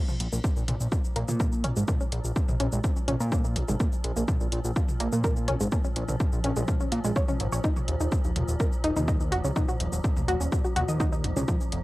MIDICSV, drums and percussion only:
0, 0, Header, 1, 2, 480
1, 0, Start_track
1, 0, Key_signature, -5, "minor"
1, 0, Tempo, 480000
1, 1882, Time_signature, 4, 2, 24, 8
1, 11836, End_track
2, 0, Start_track
2, 0, Title_t, "Drums"
2, 85, Note_on_c, 9, 47, 90
2, 85, Note_on_c, 9, 82, 33
2, 185, Note_off_c, 9, 47, 0
2, 185, Note_off_c, 9, 82, 0
2, 200, Note_on_c, 9, 42, 102
2, 300, Note_off_c, 9, 42, 0
2, 325, Note_on_c, 9, 82, 68
2, 425, Note_off_c, 9, 82, 0
2, 440, Note_on_c, 9, 36, 121
2, 441, Note_on_c, 9, 82, 55
2, 540, Note_off_c, 9, 36, 0
2, 541, Note_off_c, 9, 82, 0
2, 566, Note_on_c, 9, 82, 34
2, 666, Note_off_c, 9, 82, 0
2, 681, Note_on_c, 9, 42, 95
2, 681, Note_on_c, 9, 47, 94
2, 781, Note_off_c, 9, 42, 0
2, 781, Note_off_c, 9, 47, 0
2, 806, Note_on_c, 9, 82, 69
2, 906, Note_off_c, 9, 82, 0
2, 920, Note_on_c, 9, 36, 114
2, 921, Note_on_c, 9, 82, 57
2, 1020, Note_off_c, 9, 36, 0
2, 1021, Note_off_c, 9, 82, 0
2, 1045, Note_on_c, 9, 82, 34
2, 1145, Note_off_c, 9, 82, 0
2, 1160, Note_on_c, 9, 42, 104
2, 1260, Note_off_c, 9, 42, 0
2, 1284, Note_on_c, 9, 47, 90
2, 1284, Note_on_c, 9, 82, 70
2, 1384, Note_off_c, 9, 47, 0
2, 1384, Note_off_c, 9, 82, 0
2, 1400, Note_on_c, 9, 36, 117
2, 1400, Note_on_c, 9, 82, 57
2, 1500, Note_off_c, 9, 36, 0
2, 1501, Note_off_c, 9, 82, 0
2, 1524, Note_on_c, 9, 82, 34
2, 1624, Note_off_c, 9, 82, 0
2, 1640, Note_on_c, 9, 42, 87
2, 1740, Note_off_c, 9, 42, 0
2, 1764, Note_on_c, 9, 82, 68
2, 1864, Note_off_c, 9, 82, 0
2, 1879, Note_on_c, 9, 47, 90
2, 1879, Note_on_c, 9, 82, 58
2, 1880, Note_on_c, 9, 36, 119
2, 1979, Note_off_c, 9, 47, 0
2, 1979, Note_off_c, 9, 82, 0
2, 1980, Note_off_c, 9, 36, 0
2, 2005, Note_on_c, 9, 82, 35
2, 2105, Note_off_c, 9, 82, 0
2, 2120, Note_on_c, 9, 42, 105
2, 2220, Note_off_c, 9, 42, 0
2, 2244, Note_on_c, 9, 82, 67
2, 2344, Note_off_c, 9, 82, 0
2, 2360, Note_on_c, 9, 36, 123
2, 2360, Note_on_c, 9, 82, 58
2, 2460, Note_off_c, 9, 36, 0
2, 2460, Note_off_c, 9, 82, 0
2, 2485, Note_on_c, 9, 47, 92
2, 2485, Note_on_c, 9, 82, 35
2, 2585, Note_off_c, 9, 47, 0
2, 2585, Note_off_c, 9, 82, 0
2, 2600, Note_on_c, 9, 42, 98
2, 2700, Note_off_c, 9, 42, 0
2, 2725, Note_on_c, 9, 82, 68
2, 2825, Note_off_c, 9, 82, 0
2, 2840, Note_on_c, 9, 36, 118
2, 2840, Note_on_c, 9, 82, 59
2, 2940, Note_off_c, 9, 36, 0
2, 2940, Note_off_c, 9, 82, 0
2, 2964, Note_on_c, 9, 82, 34
2, 3064, Note_off_c, 9, 82, 0
2, 3080, Note_on_c, 9, 42, 106
2, 3080, Note_on_c, 9, 47, 88
2, 3180, Note_off_c, 9, 42, 0
2, 3180, Note_off_c, 9, 47, 0
2, 3205, Note_on_c, 9, 82, 67
2, 3305, Note_off_c, 9, 82, 0
2, 3320, Note_on_c, 9, 82, 56
2, 3321, Note_on_c, 9, 36, 126
2, 3420, Note_off_c, 9, 82, 0
2, 3421, Note_off_c, 9, 36, 0
2, 3444, Note_on_c, 9, 82, 34
2, 3544, Note_off_c, 9, 82, 0
2, 3560, Note_on_c, 9, 42, 93
2, 3660, Note_off_c, 9, 42, 0
2, 3685, Note_on_c, 9, 47, 88
2, 3685, Note_on_c, 9, 82, 68
2, 3785, Note_off_c, 9, 47, 0
2, 3785, Note_off_c, 9, 82, 0
2, 3800, Note_on_c, 9, 82, 57
2, 3801, Note_on_c, 9, 36, 124
2, 3900, Note_off_c, 9, 82, 0
2, 3901, Note_off_c, 9, 36, 0
2, 3925, Note_on_c, 9, 82, 34
2, 4025, Note_off_c, 9, 82, 0
2, 4041, Note_on_c, 9, 42, 106
2, 4141, Note_off_c, 9, 42, 0
2, 4166, Note_on_c, 9, 82, 69
2, 4266, Note_off_c, 9, 82, 0
2, 4281, Note_on_c, 9, 36, 126
2, 4281, Note_on_c, 9, 47, 86
2, 4281, Note_on_c, 9, 82, 57
2, 4381, Note_off_c, 9, 36, 0
2, 4381, Note_off_c, 9, 47, 0
2, 4381, Note_off_c, 9, 82, 0
2, 4405, Note_on_c, 9, 82, 34
2, 4505, Note_off_c, 9, 82, 0
2, 4521, Note_on_c, 9, 42, 100
2, 4621, Note_off_c, 9, 42, 0
2, 4645, Note_on_c, 9, 82, 68
2, 4745, Note_off_c, 9, 82, 0
2, 4761, Note_on_c, 9, 36, 122
2, 4761, Note_on_c, 9, 82, 55
2, 4861, Note_off_c, 9, 36, 0
2, 4861, Note_off_c, 9, 82, 0
2, 4885, Note_on_c, 9, 47, 84
2, 4885, Note_on_c, 9, 82, 34
2, 4985, Note_off_c, 9, 47, 0
2, 4985, Note_off_c, 9, 82, 0
2, 5001, Note_on_c, 9, 42, 110
2, 5101, Note_off_c, 9, 42, 0
2, 5125, Note_on_c, 9, 82, 67
2, 5225, Note_off_c, 9, 82, 0
2, 5240, Note_on_c, 9, 82, 57
2, 5241, Note_on_c, 9, 36, 123
2, 5340, Note_off_c, 9, 82, 0
2, 5341, Note_off_c, 9, 36, 0
2, 5364, Note_on_c, 9, 82, 33
2, 5464, Note_off_c, 9, 82, 0
2, 5480, Note_on_c, 9, 42, 96
2, 5480, Note_on_c, 9, 47, 84
2, 5579, Note_off_c, 9, 42, 0
2, 5579, Note_off_c, 9, 47, 0
2, 5604, Note_on_c, 9, 82, 68
2, 5704, Note_off_c, 9, 82, 0
2, 5720, Note_on_c, 9, 82, 57
2, 5721, Note_on_c, 9, 36, 124
2, 5820, Note_off_c, 9, 82, 0
2, 5821, Note_off_c, 9, 36, 0
2, 5844, Note_on_c, 9, 82, 32
2, 5944, Note_off_c, 9, 82, 0
2, 5959, Note_on_c, 9, 42, 107
2, 6059, Note_off_c, 9, 42, 0
2, 6084, Note_on_c, 9, 47, 87
2, 6084, Note_on_c, 9, 82, 65
2, 6184, Note_off_c, 9, 47, 0
2, 6184, Note_off_c, 9, 82, 0
2, 6200, Note_on_c, 9, 82, 53
2, 6201, Note_on_c, 9, 36, 126
2, 6300, Note_off_c, 9, 82, 0
2, 6301, Note_off_c, 9, 36, 0
2, 6324, Note_on_c, 9, 82, 34
2, 6424, Note_off_c, 9, 82, 0
2, 6440, Note_on_c, 9, 42, 99
2, 6540, Note_off_c, 9, 42, 0
2, 6564, Note_on_c, 9, 82, 65
2, 6664, Note_off_c, 9, 82, 0
2, 6680, Note_on_c, 9, 47, 86
2, 6680, Note_on_c, 9, 82, 54
2, 6681, Note_on_c, 9, 36, 118
2, 6780, Note_off_c, 9, 47, 0
2, 6780, Note_off_c, 9, 82, 0
2, 6781, Note_off_c, 9, 36, 0
2, 6805, Note_on_c, 9, 82, 32
2, 6905, Note_off_c, 9, 82, 0
2, 6919, Note_on_c, 9, 42, 107
2, 7019, Note_off_c, 9, 42, 0
2, 7044, Note_on_c, 9, 82, 64
2, 7144, Note_off_c, 9, 82, 0
2, 7160, Note_on_c, 9, 82, 53
2, 7161, Note_on_c, 9, 36, 122
2, 7260, Note_off_c, 9, 82, 0
2, 7261, Note_off_c, 9, 36, 0
2, 7284, Note_on_c, 9, 47, 87
2, 7284, Note_on_c, 9, 82, 33
2, 7384, Note_off_c, 9, 47, 0
2, 7384, Note_off_c, 9, 82, 0
2, 7400, Note_on_c, 9, 42, 90
2, 7500, Note_off_c, 9, 42, 0
2, 7524, Note_on_c, 9, 82, 64
2, 7624, Note_off_c, 9, 82, 0
2, 7640, Note_on_c, 9, 82, 53
2, 7641, Note_on_c, 9, 36, 116
2, 7740, Note_off_c, 9, 82, 0
2, 7741, Note_off_c, 9, 36, 0
2, 7764, Note_on_c, 9, 47, 91
2, 7764, Note_on_c, 9, 82, 32
2, 7864, Note_off_c, 9, 47, 0
2, 7864, Note_off_c, 9, 82, 0
2, 7880, Note_on_c, 9, 42, 102
2, 7980, Note_off_c, 9, 42, 0
2, 8005, Note_on_c, 9, 82, 65
2, 8105, Note_off_c, 9, 82, 0
2, 8119, Note_on_c, 9, 82, 52
2, 8121, Note_on_c, 9, 36, 122
2, 8219, Note_off_c, 9, 82, 0
2, 8221, Note_off_c, 9, 36, 0
2, 8244, Note_on_c, 9, 82, 33
2, 8344, Note_off_c, 9, 82, 0
2, 8360, Note_on_c, 9, 42, 93
2, 8360, Note_on_c, 9, 47, 93
2, 8460, Note_off_c, 9, 42, 0
2, 8460, Note_off_c, 9, 47, 0
2, 8484, Note_on_c, 9, 82, 62
2, 8584, Note_off_c, 9, 82, 0
2, 8600, Note_on_c, 9, 36, 117
2, 8600, Note_on_c, 9, 82, 53
2, 8700, Note_off_c, 9, 36, 0
2, 8700, Note_off_c, 9, 82, 0
2, 8725, Note_on_c, 9, 82, 31
2, 8825, Note_off_c, 9, 82, 0
2, 8840, Note_on_c, 9, 42, 102
2, 8940, Note_off_c, 9, 42, 0
2, 8965, Note_on_c, 9, 47, 91
2, 8965, Note_on_c, 9, 82, 64
2, 9065, Note_off_c, 9, 47, 0
2, 9065, Note_off_c, 9, 82, 0
2, 9081, Note_on_c, 9, 36, 120
2, 9081, Note_on_c, 9, 82, 51
2, 9181, Note_off_c, 9, 36, 0
2, 9181, Note_off_c, 9, 82, 0
2, 9205, Note_on_c, 9, 82, 32
2, 9305, Note_off_c, 9, 82, 0
2, 9321, Note_on_c, 9, 42, 90
2, 9421, Note_off_c, 9, 42, 0
2, 9445, Note_on_c, 9, 82, 63
2, 9545, Note_off_c, 9, 82, 0
2, 9560, Note_on_c, 9, 47, 95
2, 9560, Note_on_c, 9, 82, 53
2, 9561, Note_on_c, 9, 36, 112
2, 9660, Note_off_c, 9, 47, 0
2, 9660, Note_off_c, 9, 82, 0
2, 9661, Note_off_c, 9, 36, 0
2, 9685, Note_on_c, 9, 82, 32
2, 9785, Note_off_c, 9, 82, 0
2, 9800, Note_on_c, 9, 42, 98
2, 9900, Note_off_c, 9, 42, 0
2, 9925, Note_on_c, 9, 82, 64
2, 10025, Note_off_c, 9, 82, 0
2, 10040, Note_on_c, 9, 82, 52
2, 10041, Note_on_c, 9, 36, 119
2, 10140, Note_off_c, 9, 82, 0
2, 10141, Note_off_c, 9, 36, 0
2, 10165, Note_on_c, 9, 47, 98
2, 10165, Note_on_c, 9, 82, 33
2, 10265, Note_off_c, 9, 47, 0
2, 10265, Note_off_c, 9, 82, 0
2, 10281, Note_on_c, 9, 42, 90
2, 10381, Note_off_c, 9, 42, 0
2, 10406, Note_on_c, 9, 82, 63
2, 10506, Note_off_c, 9, 82, 0
2, 10521, Note_on_c, 9, 36, 112
2, 10521, Note_on_c, 9, 82, 54
2, 10621, Note_off_c, 9, 36, 0
2, 10621, Note_off_c, 9, 82, 0
2, 10646, Note_on_c, 9, 82, 30
2, 10746, Note_off_c, 9, 82, 0
2, 10761, Note_on_c, 9, 42, 99
2, 10761, Note_on_c, 9, 47, 92
2, 10861, Note_off_c, 9, 42, 0
2, 10861, Note_off_c, 9, 47, 0
2, 10886, Note_on_c, 9, 82, 63
2, 10986, Note_off_c, 9, 82, 0
2, 11001, Note_on_c, 9, 36, 116
2, 11001, Note_on_c, 9, 82, 54
2, 11101, Note_off_c, 9, 36, 0
2, 11101, Note_off_c, 9, 82, 0
2, 11126, Note_on_c, 9, 82, 31
2, 11226, Note_off_c, 9, 82, 0
2, 11241, Note_on_c, 9, 42, 88
2, 11341, Note_off_c, 9, 42, 0
2, 11365, Note_on_c, 9, 47, 96
2, 11365, Note_on_c, 9, 82, 64
2, 11465, Note_off_c, 9, 47, 0
2, 11465, Note_off_c, 9, 82, 0
2, 11481, Note_on_c, 9, 36, 112
2, 11481, Note_on_c, 9, 82, 55
2, 11581, Note_off_c, 9, 36, 0
2, 11581, Note_off_c, 9, 82, 0
2, 11606, Note_on_c, 9, 82, 34
2, 11706, Note_off_c, 9, 82, 0
2, 11720, Note_on_c, 9, 42, 96
2, 11820, Note_off_c, 9, 42, 0
2, 11836, End_track
0, 0, End_of_file